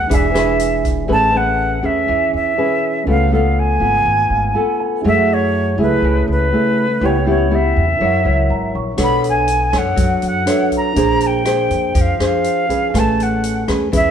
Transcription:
Already playing: F#4 A#4 B4 F#5 G#5
0.07 E1 E3 D4 E4 G#4 B4 D5, kick, closed hi-hat
0.14 E5 G#5
0.34 D4 G#4 B4, cross-stick, closed hi-hat
0.59 closed hi-hat
0.85 kick, closed hi-hat
1.06 A1 A3 C#4 G#4 B4
1.11 B4 G#5 A5
1.34 C#4 G#4 B4 F#5
1.83 E2 C#4 G#4 B4 E5
2.08 E2 E3
2.33 E2 E5
2.55 C#4 G#4 B4 G#5
3.03 C#2 C#3 A3 B3 C#4 F4 B4
3.08 A4 F5
3.32 B3 F4 A4 F5
3.59 G#5
3.80 G#1 B3 F4
4.05 G#1
4.30 G#1 F5
4.55 B3 F4 A4 G#5
4.80 G#5
5.02 F#2 F#3 A3 E4 G#4
5.06 E4 G#4 E5 F#5
5.33 C#5
5.78 C#2 A3 E4 G#4
5.82 B4
6.02 C#2 C#3
6.28 C#2
6.32 B4
6.52 A3 E4 G#4
7.00 C#2 C#3 B3 E4 G4 B4
7.04 C#5 G5
7.26 B3 E4 G4 C#5
7.51 B3 E4 G4
7.55 E5
7.76 E2
7.97 F#2 F#3 E4 A#4 C#5
8.01 A#4 C#5 F#5
8.25 C#2 E4 A#4 C#5 E5
8.38 F#5
8.50 G#1 A#5
8.75 A#1 C#6
8.96 B1 B3 D4 A4 B4 C#5, kick, cross-stick, closed hi-hat
9.01 A4 C#5 B5
9.24 closed hi-hat
9.29 G#5
9.48 closed hi-hat
9.73 F#2 D4 A4 C#5, kick, cross-stick, closed hi-hat
9.78 F#5
9.96 F#2 F#3, kick, closed hi-hat
10.22 F#2, closed hi-hat
10.28 F#5
10.45 D4 A4 B4 C#5 E5, cross-stick, closed hi-hat
10.72 kick, closed hi-hat
10.77 A#5
10.92 D4 A#4
10.96 A#1 A#3 D4 G#4 C5, kick, closed hi-hat
11.21 closed hi-hat
11.27 G5
11.45 D4 G#4 C5, cross-stick, closed hi-hat
11.70 F2, kick, closed hi-hat
11.95 F2 F3, kick, closed hi-hat
12.01 F5
12.20 F2 D4 G#4 C5, cross-stick, closed hi-hat
12.24 F5
12.44 closed hi-hat
12.69 C#4 G#4 B4, kick, closed hi-hat
12.90 C#4
12.94 A1 A3 B4 G#5, kick, cross-stick, closed hi-hat
12.99 A5
13.20 F#5, closed hi-hat
13.44 closed hi-hat
13.68 E2 C#4 G#4 B4, kick, cross-stick, closed hi-hat
13.92 E2 E3 C#4 G#4 B4 E5, kick, closed hi-hat

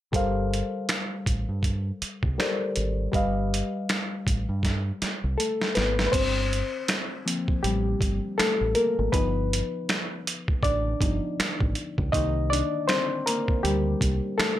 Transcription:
0.12 G1 G3 G4 A4 A#4 C5, kick, closed hi-hat
0.16 F5
0.54 closed hi-hat
0.89 finger snap, snare, closed hi-hat
1.26 A1, kick, closed hi-hat
1.49 G2
1.63 kick, closed hi-hat
2.02 muted fingered electric bass stroke, closed hi-hat
2.23 C2, kick
2.38 G3 G4 A4 A#4 C5 D5, finger snap, snare, closed hi-hat
2.76 G#1, closed hi-hat
3.12 G1 G3 G4 B4 D#5, kick, closed hi-hat
3.16 F5
3.54 closed hi-hat
3.89 finger snap, snare, closed hi-hat
4.27 A1, kick, closed hi-hat
4.49 G2
4.63 kick, snare, closed hi-hat
5.02 muted fingered electric bass stroke, snare, closed hi-hat
5.24 C2
5.38 A3 A4, closed hi-hat
5.62 snare
5.75 G#1 B3 B4, snare, closed hi-hat
5.99 snare
6.07 B4
6.12 G1 C4 C5, kick, closed hi-hat, crash
6.53 closed hi-hat
6.88 finger snap, snare, closed hi-hat
7.26 F3 A#3 C4, closed hi-hat
7.48 kick
7.63 A1 G3 G4, closed hi-hat
8.01 G1, kick, closed hi-hat
8.38 A3 A4, finger snap, muted fingered electric bass stroke, snare, closed hi-hat
8.61 A1
8.75 A#3 A#4, closed hi-hat
8.99 G#1
9.12 G1 F3 B3 D#4 B4, kick, closed hi-hat
9.53 closed hi-hat
9.89 finger snap, snare, closed hi-hat
10.27 closed hi-hat
10.48 kick
10.63 A1 D4 D5, kick, closed hi-hat
11.01 G1 F3 B3 D#4, kick, closed hi-hat
11.39 finger snap, muted fingered electric bass stroke, snare, closed hi-hat
11.60 A1, kick
11.75 closed hi-hat
11.98 C#2, kick
12.12 C2 D#3 A#3 D#4 D#5, kick, closed hi-hat
12.50 D4 D5, closed hi-hat
12.88 C4 C5, finger snap, snare, closed hi-hat
13.26 A#3 A#4, closed hi-hat
13.48 kick
13.63 D2 G3 G4, closed hi-hat
14.01 C2, kick, closed hi-hat
14.38 A3 A4, finger snap, muted fingered electric bass stroke, snare, closed hi-hat

